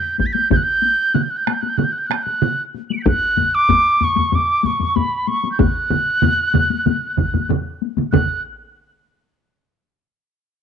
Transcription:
Already playing: G6
0.18 G6, taiko, taiko high
0.26 B6
0.33 G6, taiko high
0.50 G6, taiko, taiko mid, taiko high
0.56 F#6
0.63 G6
0.82 taiko high
1.14 F#6, taiko mid, taiko high
1.23 G6
1.30 F#6
1.37 G6
1.45 F#6, taiko rim, taiko high
1.53 G6
1.61 F#6, taiko high
1.69 G6
1.77 F#6, taiko mid, taiko high
1.84 G6
1.92 F#6
1.98 G6
2.07 F#6, taiko high
2.11 taiko rim
2.15 G6
2.23 F#6, taiko high
2.42 taiko mid, taiko high
2.74 taiko high
2.90 D7 F#7, taiko high
2.97 B6 C#7
3.02 G6, taiko, taiko high
3.08 F#6
3.37 taiko low-mid, taiko high
3.54 D6
3.69 taiko, taiko low-mid, taiko high
4.01 C#6, taiko low-mid, taiko high
4.16 taiko low-mid, taiko high
4.32 D6, taiko low-mid, taiko high
4.63 C#6, taiko low-mid, taiko high
4.80 taiko low-mid, taiko high
4.96 B5, taiko low-mid, taiko high
5.27 C#6, taiko high
5.44 taiko high
5.52 G6
5.59 F#6, taiko, taiko low-mid, taiko mid, taiko high
5.90 taiko low-mid, taiko mid, taiko high
6.22 taiko low-mid, taiko mid, taiko high
6.54 taiko low-mid, taiko mid, taiko high
6.70 taiko high
6.86 taiko low-mid, taiko mid, taiko high
7.17 taiko, taiko low-mid, taiko mid, taiko high
7.34 taiko low-mid, taiko mid, taiko high
7.49 taiko low-mid, taiko mid, taiko high
7.82 taiko high
7.97 taiko low-mid, taiko mid, taiko high
8.12 F#6, taiko, taiko low-mid, taiko mid, taiko high

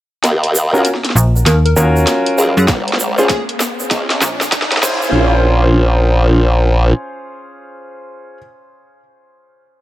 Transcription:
0.24 D#2, snare, closed hi-hat, riser, shaker
0.44 closed hi-hat
0.55 shaker
0.73 C#4 F4 F#4 A#4, shaker
0.85 snare, closed hi-hat, shaker
0.95 snare
1.05 snare, closed hi-hat
1.10 snare
1.15 A#1, shaker
1.36 shaker
1.46 D#2 A#4, snare, closed hi-hat, shaker
1.65 A#4, closed hi-hat
1.76 D#2 C#4 F4 F#4 A#4, shaker
1.96 shaker
2.07 snare, closed hi-hat, shaker
2.26 closed hi-hat
2.38 D#2 G#4, shaker
2.57 F#2 G#4, shaker
2.68 A#1, kick, snare, closed hi-hat, shaker
2.88 closed hi-hat
2.93 snare
2.99 shaker
3.18 C#4 F4 G#4 C5, shaker
3.29 G#4, kick, snare, closed hi-hat, shaker
3.49 closed hi-hat
3.60 snare, shaker
3.80 shaker
3.91 C#2, kick, snare, closed hi-hat, shaker
4.10 snare, closed hi-hat
4.22 A#1, snare, shaker
4.41 snare, shaker
4.52 kick, snare, closed hi-hat, shaker
4.62 snare
4.72 A#1, snare, closed hi-hat
4.77 snare
4.83 A#1 C#4 F4 G#4 C5, kick, snare, crash, shaker
5.02 shaker

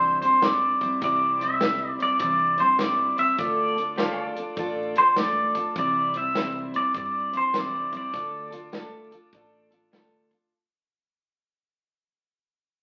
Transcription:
Already playing: G2 C3 E3 G3 C4 E4 G4 C5 E5
0.21 G3 C4 E4 C5, closed hi-hat
0.41 G3 C4 E4 C5 D5, snare, closed hi-hat
0.81 G3 C4 E4 C5, kick, closed hi-hat
1.01 C2 C3 E3 G3 C4 E4 C5 D5, kick, closed hi-hat
1.39 G3 C4 E4 C5 E5, closed hi-hat
1.60 G3 C4 E4 C5, snare, closed hi-hat
1.88 D5
1.99 G3 C4 E4 C5 D5, closed hi-hat
2.19 G2 C3 E3 G3 C4 E4 C5 D5, kick, closed hi-hat
2.58 G3 C4 E4 C5, closed hi-hat
2.78 G3 C4 E4 C5 D5, snare, closed hi-hat
3.16 G3 C4 E4 C5 E5, closed hi-hat
3.37 D2 D3 A3 D4 F4 A4 D5, kick, closed hi-hat
3.76 D4 F4 A4, closed hi-hat
3.96 A3 D4 F4 G4 A4 C5 F5, snare, closed hi-hat
4.22 A4 D5
4.36 D4 F4 A4, closed hi-hat
4.56 A1 D3 A3 D4 F4 A4, kick, closed hi-hat
4.95 F4 A4 C5, closed hi-hat
4.99 D4
5.16 A3 D4 F4 A4 D5, snare, closed hi-hat
5.55 D4 F4 A4, kick, closed hi-hat
5.75 C2 C3 E3 G3 C4 E4 C5 D5, kick, closed hi-hat
6.14 C4 E4 C5 E5, closed hi-hat
6.18 G3
6.35 C3 E3 G3 C4 E4 C5, snare, closed hi-hat
6.74 G3 C4 E4 C5 D5, closed hi-hat
6.93 G2 G3 C4 E4 C5, kick, closed hi-hat
6.98 D5
7.33 G3 C4 E4 C5, closed hi-hat
7.37 C5
7.53 C3 E3 G3 C4 E4 C5, snare, closed hi-hat
7.59 D5
7.92 G3 C4 E4 C5, kick, closed hi-hat
7.97 D5
8.12 D2 D3 A3 D4 F4 A4, kick, closed hi-hat
8.51 D4 F4 A4, closed hi-hat
8.72 D3 A3 D4 F4 A4, snare, closed hi-hat
9.12 D4 F4 A4, closed hi-hat
9.33 A1 A3 D4 F4 A4, kick, closed hi-hat
9.71 D4 F4 A4, closed hi-hat
9.92 D3 A3 D4 F4 A4, snare, closed hi-hat
10.31 D4 F4 A4, kick, closed hi-hat

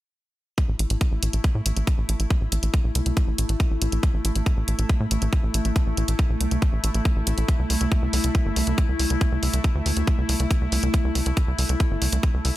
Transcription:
0.58 A3 E4, kick, closed hi-hat
0.69 A1
0.79 A1, closed hi-hat
0.90 A1, closed hi-hat
1.01 kick, closed hi-hat
1.12 A1
1.23 A1, closed hi-hat
1.33 A1, closed hi-hat
1.44 kick, closed hi-hat
1.55 A2
1.66 A1, closed hi-hat
1.77 A1, closed hi-hat
1.87 kick, closed hi-hat
1.98 A1
2.09 A1, closed hi-hat
2.20 A1, closed hi-hat
2.30 kick, closed hi-hat
2.41 A1
2.52 A1, closed hi-hat
2.63 A1, closed hi-hat
2.74 kick, closed hi-hat
2.84 A#1
2.95 C2, closed hi-hat
3.06 C2, closed hi-hat
3.17 kick, closed hi-hat
3.28 A1
3.38 A1, closed hi-hat
3.49 A1, closed hi-hat
3.60 kick, closed hi-hat
3.71 A1
3.82 A1, closed hi-hat
3.92 A1, closed hi-hat
4.03 kick, closed hi-hat
4.14 A1
4.25 A1, closed hi-hat
4.36 A1, closed hi-hat
4.46 kick, closed hi-hat
4.57 A1
4.68 A1, closed hi-hat
4.79 A1, closed hi-hat
4.89 kick, closed hi-hat
5.00 A2
5.11 A1, closed hi-hat
5.22 A1, closed hi-hat
5.33 kick, closed hi-hat
5.43 A1
5.54 A1, closed hi-hat
5.65 A1, closed hi-hat
5.76 kick, closed hi-hat
5.87 A1
5.97 A1, closed hi-hat
6.08 A1, closed hi-hat
6.19 kick, closed hi-hat
6.30 A#1
6.41 C2, closed hi-hat
6.51 C2, closed hi-hat
6.62 kick, closed hi-hat
6.73 A1
6.84 A1, closed hi-hat
6.94 A1, closed hi-hat
7.05 kick, closed hi-hat
7.16 A1
7.27 A1, closed hi-hat
7.38 A1, closed hi-hat
7.48 kick, closed hi-hat
7.59 C2
7.70 C2, open hi-hat
7.81 C2, closed hi-hat
7.92 kick, closed hi-hat
8.02 C2
8.13 C2, open hi-hat
8.24 C2, closed hi-hat
8.35 kick, closed hi-hat
8.46 G1
8.56 C2, open hi-hat
8.67 C2, closed hi-hat
8.78 kick, closed hi-hat
8.89 C2
8.99 C2, open hi-hat
9.10 C2, closed hi-hat
9.21 kick, closed hi-hat
9.32 C2
9.43 C2, open hi-hat
9.53 C2, closed hi-hat
9.64 kick, closed hi-hat
9.75 D2
9.86 D2, open hi-hat
9.97 D2, closed hi-hat
10.07 kick, closed hi-hat
10.18 C2
10.29 C2, open hi-hat
10.40 C2, closed hi-hat
10.51 kick, closed hi-hat
10.61 C2
10.72 C2, open hi-hat
10.83 C2, closed hi-hat
10.94 kick, closed hi-hat
11.05 C2
11.15 C2, open hi-hat
11.26 C2, closed hi-hat
11.37 kick, closed hi-hat
11.48 C2
11.58 C2, open hi-hat
11.69 C2, closed hi-hat
11.80 kick, closed hi-hat
11.91 G1
12.02 C2, open hi-hat
12.12 C2, closed hi-hat
12.23 kick, closed hi-hat
12.34 C2
12.45 C2, open hi-hat

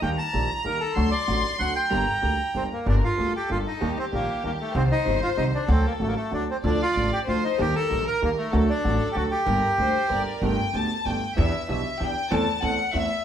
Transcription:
0.02 D#2 D#3 G3 A#3 G4 G5 A#5
0.18 A5
0.33 A#1 A#2 D#3 G3 A#3 G4
0.50 A#5
0.64 D#2 D#3 G3 A#3 G4 A#4
0.81 A4
0.96 D2 D3 F#3 A3 F#4 C6
1.11 D5
1.27 A1 A2 D3 F#3 A3 F#4
1.59 D2 D3 F#3 A3 F#4 F#5
1.76 G5
1.90 G1 G2 D3 G3 A#3 G4 A#5
2.22 D2 D3 G3 A#3 G4
2.54 G1 G2 D3 G3 A#3 C4 G4
2.73 A#3
2.86 G1 G2 D3 G3 A#3 D4 G4 A#4
3.05 F4
3.18 D2 D3 G3 A#3 G4 A4
3.36 G4
3.49 G1 G2 D3 G3 A#3 F4 G4
3.67 D#4
3.81 D#2 D#3 G3 A#3 G4
3.99 C4
4.12 A#1 A#2 D#3 G3 A#3 G4
4.44 D#2 D#3 G3 A#3 G4
4.61 A3
4.75 C2 C3 D#3 G3 C4 G4 C5
4.91 D#4
5.05 G1 G2 D#3 G3 C4 G4
5.23 F4
5.36 C2 C3 D#3 G3 C4 D#4 G4
5.55 D4
5.68 D2 D3 F#3 A3 C4 F#4 A4
5.86 A#3
5.99 A1 A2 D3 F#3 A3 F#4
6.08 A#3
6.16 A3
6.31 D2 D3 F#3 A3 D4 F#4
6.51 C4
6.63 D2 D3 F3 A3 D4 F4 D5
6.82 F4
6.96 A1 A2 D3 F3 A3 F4
7.13 G4
7.27 D2 D3 F3 A3 F4 C5
7.44 D#4
7.58 D#2 D#3 G3 A#3 G4 A#4
7.76 A4
7.90 A#1 A#2 D#3 G3 A#3 G4
8.07 A#4
8.22 D#2 D#3 G3 A#3 G4
8.38 A3
8.52 D2 D3 F#3 A3 F#4 A4
8.69 D4
8.84 A1 A2 D3 F#3 A3 F#4 A4
9.12 D2 D3 F#3 A3 F#4 G4
9.17 F#4
9.31 G4
9.46 G1 G2 D3 G3 A#3 G4 A#4
9.78 D2 D3 G3 A#3 G4 C5
10.10 G1 G2 D3 G3 A#3 G4 A#4 D5
10.42 G1 G2 D3 A3 B3 G4 G5
10.74 D2 D3 A3 B3 G4 A5
11.05 G1 G2 D3 A3 B3 G4 G5
11.37 E2 E3 B3 D4 G4 E5
11.68 B1 B2 E3 B3 D4 G4 E5
12.00 E2 E3 B3 D4 G4 G5
12.31 E2 E3 A3 C4 A4 A5
12.62 E2 E3 A3 C4 A4 F#5
12.93 E2 E3 A3 C4 A4 E5

